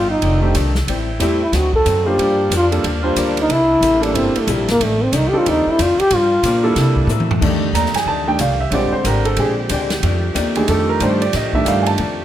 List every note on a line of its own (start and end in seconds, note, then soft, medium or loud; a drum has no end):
0.00 0.21 G1 medium
0.00 0.11 F2 medium
0.00 0.11 D#3 medium
0.00 0.12 A3 medium
0.00 0.12 D4 medium
0.00 0.73 F4 medium
0.00 1.51 A4 medium
0.00 0.73 D5 medium
0.00 0.73 G5 medium
0.10 0.58 D#4 loud
0.22 0.54 F1 medium
0.22 0.44 F2 soft
0.22 0.45 D#3 medium
0.22 0.45 A3 soft
0.22 0.46 D4 medium
0.22 ride medium
0.41 0.53 D#3 medium
0.41 0.53 A3 medium
0.41 0.53 C4 medium
0.41 0.54 D4 medium
0.41 0.54 G4 medium
0.55 0.87 C2 medium
0.55 0.77 F2 medium
0.55 0.77 D#3 medium
0.55 0.78 A3 medium
0.55 0.76 D4 medium
0.55 0.78 D4 medium
0.55 hi-hat pedal medium
0.55 ride medium
0.75 snare medium
0.88 1.19 A1 medium
0.88 1.09 A2 soft
0.88 1.10 G3 medium
0.88 1.11 C4 medium
0.88 1.11 E4 medium
0.88 1.54 E4 medium
0.88 2.19 C5 medium
0.88 1.54 G5 medium
0.88 ride medium
1.19 1.52 E2 medium
1.19 1.42 A2 medium
1.19 1.38 G3 medium
1.19 1.42 G3 medium
1.19 1.39 A3 medium
1.19 1.38 C4 medium
1.19 1.43 C4 medium
1.19 1.39 E4 medium
1.19 1.43 E4 medium
1.19 1.39 G4 medium
1.19 hi-hat pedal medium
1.19 ride medium
1.42 1.57 E4 loud
1.52 1.85 D2 medium
1.52 1.75 D3 soft
1.52 1.75 F#3 soft
1.52 1.76 C4 soft
1.52 4.78 D4 medium
1.52 1.76 D#4 soft
1.52 2.19 F#4 medium
1.52 1.75 F#4 medium
1.52 2.19 D#5 medium
1.52 snare soft
1.52 ride medium
1.74 2.09 A4 loud
1.74 kick medium
1.86 2.17 F#2 medium
1.86 2.07 D3 medium
1.86 2.08 F#3 medium
1.86 2.08 C4 medium
1.86 2.08 D#4 medium
1.86 hi-hat pedal medium
1.86 ride medium
2.05 2.48 G3 medium
2.05 2.48 A#3 medium
2.05 2.49 D4 medium
2.05 2.49 F4 medium
2.05 2.52 G4 loud
2.05 2.49 C5 medium
2.18 2.50 G2 medium
2.18 2.41 G2 soft
2.18 2.41 F3 medium
2.18 4.78 A#3 medium
2.18 2.42 A#3 soft
2.18 3.49 G4 medium
2.18 3.49 F5 medium
2.18 ride medium
2.22 2.42 D4 medium
2.50 2.83 F2 medium
2.50 2.73 G2 medium
2.50 2.74 F3 medium
2.50 2.74 A#3 medium
2.50 2.74 D4 medium
2.50 hi-hat pedal medium
2.50 ride medium
2.56 2.67 F4 loud
2.71 2.83 G3 medium
2.71 2.83 A#3 medium
2.71 2.83 D4 medium
2.71 2.83 F4 medium
2.71 2.83 A4 medium
2.71 ride soft
2.84 3.15 D#2 medium
2.84 3.06 G2 medium
2.84 3.07 F3 medium
2.84 3.07 A#3 medium
2.84 3.08 D4 medium
2.84 ride medium
3.02 3.46 G3 medium
3.02 3.46 A#3 medium
3.02 3.47 D4 medium
3.02 3.47 F4 medium
3.02 3.47 C5 medium
3.16 3.48 D2 medium
3.16 3.38 G2 medium
3.16 3.39 F3 medium
3.16 3.39 A#3 medium
3.16 3.39 D4 medium
3.16 hi-hat pedal medium
3.16 ride medium
3.37 3.53 D#4 loud
3.37 ride soft
3.49 3.80 C2 medium
3.49 3.71 C3 soft
3.49 3.71 A#3 soft
3.49 3.72 E4 soft
3.49 4.04 E4 loud
3.49 6.08 A4 medium
3.49 3.72 A4 medium
3.49 4.79 E5 medium
3.49 ride medium
3.81 4.13 A1 medium
3.81 4.04 C3 medium
3.81 4.05 A#3 medium
3.81 4.05 E4 medium
3.81 4.05 A4 medium
3.81 hi-hat pedal medium
3.81 ride medium
4.00 4.44 G3 medium
4.00 4.44 A#3 medium
4.00 4.44 D4 medium
4.00 4.17 D4 loud
4.00 4.45 E4 medium
4.00 4.45 A4 medium
4.00 ride soft
4.14 4.34 G1 loud
4.14 4.36 C3 soft
4.14 4.37 A#3 soft
4.14 4.42 C4 medium
4.14 4.37 E4 soft
4.14 4.38 A4 medium
4.14 ride medium
4.36 muted upright bass stroke soft
4.36 ride medium
4.40 4.53 A3 medium
4.47 4.79 A#1 loud
4.47 4.69 C3 medium
4.47 4.70 A#3 medium
4.47 4.70 E4 medium
4.47 4.70 A4 medium
4.47 hi-hat pedal medium
4.47 ride medium
4.51 4.70 G3 medium
4.68 4.85 A#3 loud
4.68 snare medium
4.68 ride medium
4.80 5.12 A1 medium
4.80 5.02 F2 medium
4.80 6.10 D#3 medium
4.80 5.03 D#3 medium
4.80 5.05 A3 medium
4.80 5.04 A3 soft
4.80 5.04 D4 medium
4.80 6.10 D5 medium
4.80 6.10 G5 medium
4.80 ride medium
5.03 5.17 C4 loud
5.12 5.32 C2 loud
5.12 5.34 F2 medium
5.12 5.35 D#3 medium
5.12 5.35 A3 medium
5.12 5.36 D4 medium
5.12 5.31 D#4 medium
5.12 hi-hat pedal medium
5.12 ride medium
5.29 5.76 G3 medium
5.29 5.76 C4 medium
5.29 5.76 D4 medium
5.29 5.39 G4 loud
5.33 5.76 D#4 medium
5.33 5.76 A4 medium
5.33 muted upright bass stroke soft
5.38 5.50 F4 loud
5.46 5.65 D#2 medium
5.46 5.67 F2 medium
5.46 5.68 D#3 medium
5.46 5.68 A3 medium
5.46 5.68 D4 medium
5.46 5.72 D#4 medium
5.46 ride medium
5.67 muted upright bass stroke soft
5.71 5.83 E4 loud
5.79 5.97 F2 medium
5.79 6.00 F2 medium
5.79 6.01 D#3 medium
5.79 6.01 A3 medium
5.79 6.01 D4 medium
5.79 6.01 F4 loud
5.79 hi-hat pedal medium
5.79 ride medium
5.99 6.17 G4 loud
5.99 muted upright bass stroke soft
5.99 ride medium
6.11 6.42 G2 medium
6.11 6.33 G2 medium
6.11 6.33 F3 soft
6.11 6.34 A#3 medium
6.11 7.41 D4 medium
6.11 6.34 D4 medium
6.11 6.77 G4 medium
6.11 6.77 F5 medium
6.11 ride medium
6.15 6.78 F4 loud
6.15 6.78 A#4 medium
6.43 6.66 G2 medium
6.43 6.75 A#2 medium
6.43 6.66 F3 medium
6.43 6.66 A#3 medium
6.43 hi-hat pedal medium
6.43 ride medium
6.47 6.67 D4 medium
6.63 7.06 G3 medium
6.63 7.06 A#3 medium
6.63 7.06 D4 medium
6.63 7.06 E4 medium
6.63 7.06 A4 medium
6.76 7.06 C3 medium
6.76 6.98 C3 medium
6.76 6.98 A#3 medium
6.76 6.99 E4 medium
6.76 7.41 A4 medium
6.76 6.99 A4 medium
6.76 7.41 E5 medium
6.76 snare soft
6.76 ride medium
6.96 kick medium
7.07 7.40 A2 loud
7.07 7.31 C3 medium
7.07 7.31 A#3 medium
7.07 7.31 E4 medium
7.07 hi-hat pedal medium
7.07 mid tom medium
7.11 7.32 A4 medium
7.20 high tom medium
7.31 floor tom medium
7.41 7.63 F2 soft
7.41 7.72 F2 medium
7.41 7.65 D#3 soft
7.41 7.64 D#3 medium
7.41 7.66 G3 soft
7.41 8.55 A3 medium
7.41 7.66 A3 soft
7.41 7.64 A3 medium
7.41 7.66 D4 medium
7.41 8.55 D4 medium
7.41 7.65 D4 medium
7.41 8.55 D#4 medium
7.41 12.25 G4 medium
7.41 kick medium
7.41 crash medium
7.73 7.92 D#2 medium
7.73 7.96 F2 medium
7.73 7.96 D#3 medium
7.73 7.96 A3 medium
7.73 7.97 D4 medium
7.73 7.94 A#5 medium
7.73 hi-hat pedal medium
7.73 ride medium
7.86 snare soft
7.94 8.07 G#5 medium
7.94 muted upright bass stroke soft
7.94 snare soft
7.94 ride medium
8.06 8.38 D2 medium
8.06 8.28 F2 soft
8.06 8.29 D#3 soft
8.06 8.29 A3 soft
8.06 8.30 D4 medium
8.06 8.27 A5 medium
8.27 8.39 D#3 soft
8.27 8.38 G3 soft
8.27 8.39 A3 soft
8.27 8.39 D4 soft
8.27 8.40 G5 medium
8.38 8.71 C2 medium
8.38 8.61 F2 medium
8.38 8.61 D#3 medium
8.38 8.62 A3 medium
8.38 8.62 D4 medium
8.38 8.60 F5 medium
8.38 hi-hat pedal medium
8.38 ride medium
8.60 8.72 E5 medium
8.70 8.90 A#1 medium
8.70 8.93 A#2 soft
8.70 9.99 D3 soft
8.70 10.02 D3 medium
8.70 9.99 G3 soft
8.70 9.99 G#3 soft
8.70 8.94 G#3 medium
8.70 10.02 C4 medium
8.70 9.99 C4 medium
8.70 8.95 D4 medium
8.70 8.72 C#5 soft
8.70 ride medium
8.74 8.95 G4 medium
8.74 8.93 D5 medium
8.92 9.05 C5 medium
8.92 muted upright bass stroke soft
9.04 9.36 G#1 medium
9.04 9.26 A#2 medium
9.04 9.27 G#3 medium
9.04 9.27 D4 medium
9.04 9.28 G4 medium
9.04 9.25 A#4 medium
9.04 hi-hat pedal medium
9.04 ride medium
9.25 9.37 A4 medium
9.25 ride soft
9.37 9.69 A#1 medium
9.37 9.59 A#2 soft
9.37 9.60 G#3 soft
9.37 9.60 D4 medium
9.37 9.60 G4 medium
9.37 9.51 G#4 medium
9.37 ride medium
9.69 10.02 D2 medium
9.69 9.92 A#2 medium
9.69 9.92 G#3 medium
9.69 9.92 D4 medium
9.69 9.93 G4 medium
9.69 hi-hat pedal medium
9.69 ride medium
9.90 snare medium
9.90 ride medium
10.01 10.24 F2 soft
10.01 10.35 F2 medium
10.01 10.25 D#3 medium
10.01 12.25 F3 medium
10.01 12.25 A3 medium
10.01 10.25 A3 medium
10.01 12.25 D4 medium
10.01 ride medium
10.06 10.26 D4 medium
10.34 10.67 D#2 loud
10.34 10.57 F2 medium
10.34 10.57 D#3 medium
10.34 10.57 A3 medium
10.34 10.57 D4 medium
10.34 hi-hat pedal medium
10.34 ride medium
10.55 10.99 D#3 soft
10.55 10.99 G3 soft
10.55 10.99 A3 soft
10.55 10.99 D4 medium
10.55 10.68 G#4 medium
10.55 ride soft
10.67 10.89 F2 soft
10.67 11.00 F2 medium
10.67 10.90 D#3 medium
10.67 10.90 A3 medium
10.67 10.91 D4 soft
10.67 10.88 A4 medium
10.67 ride medium
10.89 11.01 A#4 medium
11.00 11.22 F2 medium
11.00 11.32 G2 medium
11.00 11.22 D#3 medium
11.00 11.19 D#3 soft
11.00 11.19 G3 soft
11.00 11.23 A3 medium
11.00 11.20 A3 soft
11.00 11.23 D4 medium
11.00 11.20 D4 soft
11.00 11.22 C5 medium
11.00 hi-hat pedal medium
11.00 ride medium
11.22 11.34 D5 medium
11.22 ride soft
11.33 11.55 F2 soft
11.33 11.65 A2 medium
11.33 11.55 D#3 soft
11.33 11.56 A3 soft
11.33 11.56 D4 medium
11.33 11.55 D#5 medium
11.33 snare soft
11.33 ride medium
11.53 11.97 D#3 soft
11.53 11.97 G3 soft
11.53 11.97 A3 soft
11.53 11.97 D4 medium
11.53 11.66 E5 medium
11.53 kick medium
11.64 11.87 F2 medium
11.64 11.98 G2 medium
11.64 11.87 D#3 medium
11.64 11.88 A3 medium
11.64 11.88 D4 medium
11.64 11.87 F5 medium
11.64 hi-hat pedal medium
11.64 ride medium
11.83 11.85 G#5 medium
11.83 ride soft
11.87 12.25 A5 medium
11.97 12.20 F2 soft
11.97 12.25 F2 medium
11.97 12.21 D#3 soft
11.97 12.21 A3 soft
11.97 12.21 D4 medium
11.97 ride medium